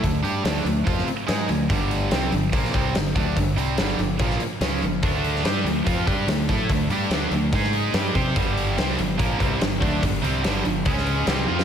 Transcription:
<<
  \new Staff \with { instrumentName = "Distorted electric guitar" } { \clef bass \time 4/4 \key g \minor \tempo 4 = 144 r1 | r1 | r1 | <d a d'>4 <g d' g'>8 <d a>8 <f c' f'>8 <g d' g'>8 <d a>8 <a e' a'>8 |
<d a>8 <g d' g'>8 <d a d'>8 <d a>8 <aes ees' aes'>4 <g d' g'>8 <c' g' c''>8 | <g, d g>4 <c g c'>8 <g, d>8 <bes, f bes>8 <c g c'>8 <g, d>8 <d a d'>8 | <g, d>8 <c g c'>8 <g, d g>8 <g, d>8 <cis gis cis'>4 <c g c'>8 <f c' f'>8 | }
  \new Staff \with { instrumentName = "Distorted electric guitar" } { \clef bass \time 4/4 \key g \minor <d a>8 <g d' g'>8 <d a d'>8 <d a>8 <f c' f'>8 r8 <aes ees' aes'>8 <d a>8 | <g, d g>4 <c g c'>8 <g, d>8 <bes, f bes>8 <c g c'>8 <g, d>8 <d a d'>8 | <g, d>8 <c g c'>8 <g, d g>8 <g, d>8 <bes, f bes>8 r8 <cis aes cis'>8 <g, d>8 | <d a d'>4 <g d' g'>8 <d a>8 <f c' f'>8 <g d' g'>8 <d a>8 <a e' a'>8 |
<d a>8 <g d' g'>8 <d a d'>8 <d a>8 <aes ees' aes'>4 <g d' g'>8 <c' g' c''>8 | <g, d g>4 <c g c'>8 <g, d>8 <bes, f bes>8 <c g c'>8 <g, d>8 <d a d'>8 | <g, d>8 <c g c'>8 <g, d g>8 <g, d>8 <cis gis cis'>4 <c g c'>8 <f c' f'>8 | }
  \new Staff \with { instrumentName = "Overdriven electric guitar" } { \clef bass \time 4/4 \key g \minor <d a>8 <g d' g'>8 <d a d'>8 <d a>8 <f c' f'>8 r8 <aes ees' aes'>8 <d a>8 | <g, d g>4 <c g c'>8 <g, d>8 <bes, f bes>8 <c g c'>8 <g, d>8 <d a d'>8 | <g, d>8 <c g c'>8 <g, d g>8 <g, d>8 <bes, f bes>8 r8 <cis aes cis'>8 <g, d>8 | <d a d'>4 <g d' g'>8 <d a>8 <f c' f'>8 <g d' g'>8 <d a>8 <a e' a'>8 |
<d a>8 <g d' g'>8 <d a d'>8 <d a>8 <aes ees' aes'>4 <g d' g'>8 <c' g' c''>8 | <g, d g>4 <c g c'>8 <g, d>8 <bes, f bes>8 <c g c'>8 <g, d>8 <d a d'>8 | <g, d>8 <c g c'>8 <g, d g>8 <g, d>8 <cis gis cis'>4 <c g c'>8 <f c' f'>8 | }
  \new Staff \with { instrumentName = "Fingered electric bass" } { \clef bass \time 4/4 \key g \minor d,8 g,8 d,8 d,8 f,8 r8 aes,8 d,8 | g,,4 c,8 g,,8 bes,,8 c,8 g,,8 d,8 | g,,8 c,8 g,,8 g,,8 bes,,8 r8 cis,8 g,,8 | d,4 g,8 d,8 f,8 g,8 d,8 a,8 |
d,8 g,8 d,8 d,8 aes,4 g,8 c8 | g,,4 c,8 g,,8 bes,,8 c,8 g,,8 d,8 | g,,8 c,8 g,,8 g,,8 cis,4 c,8 f,8 | }
  \new DrumStaff \with { instrumentName = "Drums" } \drummode { \time 4/4 <hho bd>8 hho8 <hho sn>8 hho8 <hho bd>16 sn16 hho8 <hho sn>8 hho8 | <hho bd>8 hho8 <hho sn>8 hho8 <hho bd>16 sn16 <hho bd>8 <hho sn>8 <hho bd>8 | <hho bd>8 hho8 <hho sn>8 hho8 <hho bd>16 sn16 hho8 <hho sn>8 hho8 | <hho bd>8 hho16 sn16 <hho sn>8 hho8 <hho bd>8 <hho bd>8 <hho sn>8 <hho bd>8 |
<hho bd>8 hho8 <hho sn>8 hho8 <hho bd>16 sn16 hho8 <hho sn>8 <hho bd>8 | <hho bd>8 hho8 <hho sn>8 hho8 <hho bd>8 <hho bd>8 <hho sn>8 <hho bd>8 | <hho bd>8 hho8 <hho sn>8 hho8 <hho bd>16 sn16 hho8 <hho sn>8 tommh16 sn16 | }
>>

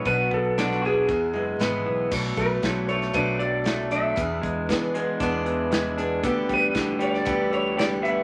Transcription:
<<
  \new Staff \with { instrumentName = "Electric slide guitar" } { \time 4/4 \key b \dorian \tempo 4 = 116 b'8 a'4 gis'4. r4 | r8 b'4 cis''8 b'8 d''4 e''8~ | e''2.~ e''8 r8 | r8 b'4 cis''16 d''8. cis''8 d''8 e''8 | }
  \new Staff \with { instrumentName = "Steel-string acoustic guitar" } { \time 4/4 \key b \dorian <b, fis b d' fis'>4 <b, fis b d' fis'>8 <b d' fis'>8 <e b e' gis'>8 <b e' gis'>8 <e b e' gis'>4 | <b, fis a d' a'>4 <fis a d' a'>8 <a d' a'>8 <b, fis a d' a'>4 <fis a d' a'>8 <a d' a'>8 | <e b d' gis'>4 <e b d' gis'>8 <b d' gis'>8 <e b d' gis'>4 <e b d' gis'>8 <b d' gis'>8 | <d e b d' g'>4 <e b d' g'>8 <b d' g'>8 <d e b d' g'>4 <e b d' g'>8 <b d' g'>8 | }
  \new Staff \with { instrumentName = "Clean electric guitar" } { \clef bass \time 4/4 \key b \dorian b,8 b8 d'8 fis'8 e,8 gis8 b8 e8 | b,8 a8 fis8 a8 d'8 fis8 a8 d'8 | e,8 gis8 e8 gis8 d'8 e8 gis8 d'8 | d8 g8 d8 g8 b8 d8 g8 b8 | }
  \new Staff \with { instrumentName = "Fingered electric bass" } { \clef bass \time 4/4 \key b \dorian b,,2 e,8 fis,,8 gis,,8 b,,8 | b,,8 b,,8 b,,4 b,,2 | e,8 e,8 e4 e,2 | d,8 d,8 d,4 d,2 | }
  \new DrumStaff \with { instrumentName = "Drums" } \drummode { \time 4/4 <hh bd>8 bd8 <hh sn>16 sn8. <hh bd>4 <hh sn>4 | <cymc bd>8 <hh bd>8 <hh bd sn>8 hh16 sn16 <hh bd>8 hh8 <hh sn>8 hh8 | <hh bd>8 <hh bd>8 <hh bd sn>8 hh8 <hh bd>8 hh8 <hh sn>8 hh8 | <hh bd>8 <hh bd>8 <hh bd sn>8 hh16 sn16 <hh bd>8 hh8 <hh sn>8 hh8 | }
>>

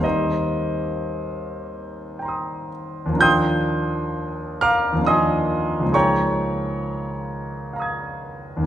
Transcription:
<<
  \new Staff \with { instrumentName = "Grand piano" } { \time 3/4 \key ees \major \tempo 4 = 63 << { <c'' ees''>2~ <c'' ees''>8 r8 | <g'' c''' ees''' g'''>4. <f'' bes'' d''' f'''>8 <ees'' aes'' c''' ees'''>4 | <des'' g'' bes'' des'''>2. | } \\ { r2 <g'' bes'' c''' ees'''>4 | r2. | r2 <f'' bes'' ees''' aes'''>4 | } >> }
  \new Staff \with { instrumentName = "Grand piano" } { \time 3/4 \key ees \major <ees, g bes c' ees'>2. | <ees, f bes d' f'>2 <ees, f bes d' f'>4 | <des, f bes ees' aes'>2. | }
>>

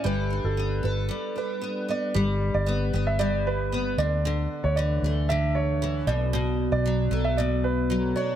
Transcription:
<<
  \new Staff \with { instrumentName = "Upright piano" } { \time 4/4 \key g \lydian \tempo 4 = 115 b'8. a'8. b'4 b'4 d''8~ | d''8. d''4 e''16 d''8 b'4 d''8~ | d''8. cis''16 d''4 e''8 cis''4 d''8~ | d''8. d''4 e''16 d''8 b'4 cis''8 | }
  \new Staff \with { instrumentName = "Steel-string acoustic guitar" } { \clef bass \time 4/4 \key g \lydian <g a'>8 d'8 b8 a'8 g8 d'8 b8 b8 | g4 b8 b8 g4 b8 d8 | d4 e8 a8 d4 e8 b,8 | b,4 fis8 a8 b,4 fis8 d'8 | }
  \new Staff \with { instrumentName = "Fingered electric bass" } { \clef bass \time 4/4 \key g \lydian g,,8. g,,8. g,,8 r2 | g,,8. g,,8. g,,2 d,8~ | d,8 r16 d,8. d,2 b,,8~ | b,,8. b,,8. b,,2 r8 | }
>>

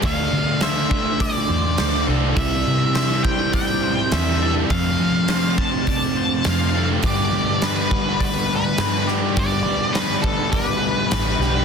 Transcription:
<<
  \new Staff \with { instrumentName = "Lead electric guitar" } { \time 4/4 \key g \mixolydian \tempo 4 = 103 f''4 e''4 d''4. r8 | e''4. g''8 g''4 e''8. r16 | f''4. a''8 a''4 f''8. r16 | d''4 b'4 b'8 b'4 r8 |
d''4 b'8 a'8 b'4 b'4 | }
  \new Staff \with { instrumentName = "Clean electric guitar" } { \time 4/4 \key g \mixolydian r4 c''4 d''8 c''8 c''8 a'8 | r4 c''4 d''8 c''8 c''8 a'8 | r4 c''4 d''8 c''8 c''8 a'8 | r4 b'4 d''8 b'8 b'8 g'8 |
r4 b'4 d''8 b'8 b'8 g'8 | }
  \new Staff \with { instrumentName = "Overdriven electric guitar" } { \clef bass \time 4/4 \key g \mixolydian <d a d' f'>2.~ <d a d' f'>8 <d a d' f'>8 | <c e g c' e'>2.~ <c e g c' e'>8 <c e g c' e'>8 | <f, c f a c' f'>2.~ <f, c f a c' f'>8 <f, c f a c' f'>8 | <g, d f g b g'>2.~ <g, d f g b g'>8 <g, d f g b g'>8 |
<g, d f g b g'>2.~ <g, d f g b g'>8 <g, d f g b g'>8 | }
  \new Staff \with { instrumentName = "Distorted electric guitar" } { \clef bass \time 4/4 \key g \mixolydian <d a d'>4. <d a d'>4. <d a d'>4 | <c g c'>4. <c g c'>4. <c g c'>4 | <f, c f>4. <f, c f>4. <f, c f>4 | <g, d g>4. <g, d g>4. <g, d g>4 |
<g, d g>4. <g, d g>4. <g, d g>4 | }
  \new Staff \with { instrumentName = "Fingered electric bass" } { \clef bass \time 4/4 \key g \mixolydian d,8 d2 e,8 d,8 c,8 | c,8 c2 r8 e,4 | f,8 f2 r8 f,4 | g,8 g2 r8 g,4 |
g,8 g2 r8 a,,8 b,,8 | }
  \new DrumStaff \with { instrumentName = "Drums" } \drummode { \time 4/4 <hho bd>4 <hho sn>8 bd8 <hho bd>4 <hho sn>4 | <hho bd>4 <hho sn>8 bd8 <hho bd>4 <hho sn>4 | <hho bd>4 <hho sn>8 bd8 <hho bd>4 <hho sn>4 | <hho bd>4 <hho sn>8 bd8 <hho bd>4 <hho sn>8 sn8 |
<hho bd>4 <hho sn>8 bd8 <hho bd>4 <hho sn>8 sn8 | }
>>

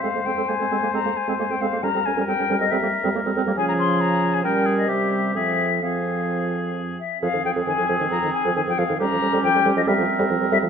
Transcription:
<<
  \new Staff \with { instrumentName = "Flute" } { \time 4/4 \key f \minor \tempo 4 = 135 f''8 g''8 aes''4 bes''8 aes''8 aes''16 g''16 f''8 | bes''8 aes''8 g''8. ees''16 e''4 r4 | aes''16 bes''16 c'''8 bes''8. aes''16 g''8. ees''16 e''4 | e''4 f''2 r8 e''8 |
f''8 g''8 aes''4 bes''8 aes''8 aes''16 g''16 f''8 | bes''4 g''8. ees''16 e''4 r8 e''8 | }
  \new Staff \with { instrumentName = "Oboe" } { \time 4/4 \key f \minor c''1 | bes'1 | aes'2 bes'8 aes'8 g'4 | aes'4 aes'2~ aes'8 r8 |
aes'1 | g'2 bes'2 | }
  \new Staff \with { instrumentName = "Clarinet" } { \time 4/4 \key f \minor c'16 bes16 c'16 c'16 bes16 c'16 c'16 bes16 c'16 bes16 r16 c'16 bes16 c'16 c'16 bes16 | des'16 c'16 des'16 des'16 c'16 des'16 des'16 c'16 c'16 bes16 r16 c'16 bes16 c'16 c'16 bes16 | des'2 des'4 c'4 | c'4 c'2~ c'8 r8 |
c'1 | des'2 c'2 | }
  \new Staff \with { instrumentName = "French horn" } { \clef bass \time 4/4 \key f \minor aes16 aes16 aes16 aes16 aes16 aes16 aes16 aes16 aes16 aes16 r16 aes16 aes16 aes16 aes16 aes16 | g16 g16 g16 g16 g16 g16 g16 g16 g16 g16 r16 g16 g16 g16 g16 g16 | f2 g4 g4 | f4 f2~ f8 r8 |
f16 ees16 f16 f16 ees16 f16 f16 ees16 f16 ees16 r16 f16 ees16 f16 f16 ees16 | g16 f16 g16 g16 f16 g16 g16 f16 g16 f16 r16 g16 f16 g16 g16 f16 | }
  \new Staff \with { instrumentName = "Bassoon" } { \clef bass \time 4/4 \key f \minor f,16 f,16 f,16 f,16 f,16 f,16 f,16 f,16 f,16 f,16 r16 f,16 f,16 f,16 f,16 f,16 | f,16 f,16 f,16 f,16 f,16 f,16 f,16 f,16 f,16 f,16 r16 f,16 f,16 f,16 f,16 f,16 | des2 bes,4 c4 | f,2.~ f,8 r8 |
f,16 f,16 f,16 f,16 f,16 f,16 f,16 f,16 f,16 f,16 r16 f,16 f,16 f,16 f,16 f,16 | f,16 f,16 f,16 f,16 f,16 f,16 f,16 f,16 f,16 f,16 r16 f,16 f,16 f,16 f,16 f,16 | }
>>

